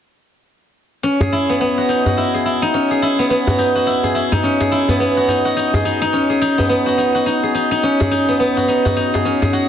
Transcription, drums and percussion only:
1.05 cabasa soft
1.21 djembe tone medium
1.21 cabasa soft
1.33 cabasa medium
1.50 cabasa soft
1.61 cabasa soft
1.79 cabasa soft
1.90 cabasa medium
2.06 djembe tone medium
2.06 cabasa soft
2.19 cabasa soft
2.36 cabasa soft
2.47 cabasa medium
2.64 cabasa soft
2.75 cabasa soft
3.03 cabasa medium
3.20 cabasa soft
3.32 cabasa soft
3.47 djembe tone medium
3.47 cabasa soft
3.60 cabasa medium
3.77 cabasa soft
3.88 cabasa soft
4.03 djembe slap soft
4.03 cabasa soft
4.16 cabasa medium
4.32 djembe tone medium
4.32 cabasa soft
4.45 cabasa soft
4.61 djembe slap medium
4.61 cabasa soft
4.73 cabasa medium
4.88 djembe tone medium
4.88 cabasa soft
5.01 cabasa soft
5.28 djembe slap soft
5.28 cabasa medium
5.46 cabasa soft
5.58 cabasa soft
5.74 djembe tone medium
5.74 cabasa soft
5.86 cabasa medium
6.03 cabasa soft
6.14 cabasa soft
6.31 cabasa soft
6.42 cabasa medium
6.59 djembe tone medium
6.59 cabasa soft
6.71 cabasa soft
6.88 cabasa soft
6.99 cabasa medium
7.16 cabasa soft
7.28 cabasa soft
7.56 cabasa medium
7.72 cabasa soft
7.84 cabasa soft
8.01 djembe tone medium
8.01 cabasa soft
8.12 cabasa medium
8.29 cabasa soft
8.41 cabasa soft
8.57 djembe slap soft
8.57 cabasa soft
8.69 cabasa medium
8.86 djembe tone medium
8.86 cabasa soft
8.98 cabasa soft
9.14 djembe slap medium
9.14 cabasa soft
9.26 cabasa medium
9.42 djembe tone medium
9.42 cabasa soft
9.54 cabasa soft

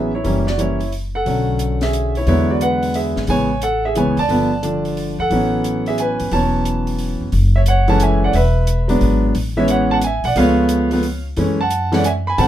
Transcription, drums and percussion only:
0.25 open hi-hat soft
0.47 snare soft
0.59 closed hi-hat soft
0.81 open hi-hat soft
0.92 open hi-hat soft
1.26 open hi-hat soft
1.59 closed hi-hat soft
1.81 snare soft
1.81 open hi-hat soft
1.93 closed hi-hat soft
2.15 open hi-hat soft
2.27 open hi-hat soft
2.61 closed hi-hat soft
2.83 open hi-hat soft
2.94 open hi-hat soft
3.16 snare soft
3.27 open hi-hat soft
3.62 closed hi-hat soft
3.95 closed hi-hat soft
4.17 open hi-hat soft
4.29 open hi-hat soft
4.63 closed hi-hat soft
4.85 open hi-hat soft
4.97 open hi-hat soft
5.31 open hi-hat soft
5.64 closed hi-hat soft
5.86 open hi-hat soft
5.98 closed hi-hat soft
6.20 open hi-hat soft
6.31 open hi-hat soft
6.65 closed hi-hat soft
6.87 open hi-hat soft
6.99 open hi-hat soft
7.32 open hi-hat soft
7.66 closed hi-hat soft
7.88 open hi-hat soft
8.00 closed hi-hat soft
8.33 open hi-hat soft
8.67 closed hi-hat soft
8.89 open hi-hat soft
9.01 open hi-hat soft
9.35 open hi-hat soft
9.68 closed hi-hat medium
10.01 closed hi-hat soft
10.24 open hi-hat soft
10.36 open hi-hat soft
10.69 closed hi-hat soft
10.91 open hi-hat soft
11.03 open hi-hat soft
11.37 open hi-hat soft
11.70 closed hi-hat soft
11.92 snare soft
11.92 open hi-hat soft
12.04 closed hi-hat medium
12.38 open hi-hat soft

